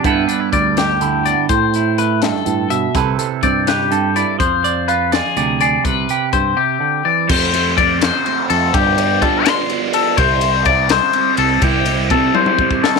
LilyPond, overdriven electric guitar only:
\new Staff \with { instrumentName = "Overdriven electric guitar" } { \clef bass \time 6/8 \key c \major \tempo 4. = 83 r2. | r2. | r2. | r2. |
r2. | <f, c f a c'>8 <f a c'>8 <c f a c'>8 <f, c f a c'>8 <c f a c'>4 | <g, d f b d'>8 <f b d'>8 <d f b d'>8 <g, d f b d'>8 <d f b d'>4 | <c g c' e'>8 <g c' e'>8 <c g c' e'>8 <c g c' e'>8 <c g c' e'>4 |
<c g c' e'>8 <g c' e'>8 <c g c' e'>8 <c g c' e'>8 <c g c' e'>4 | }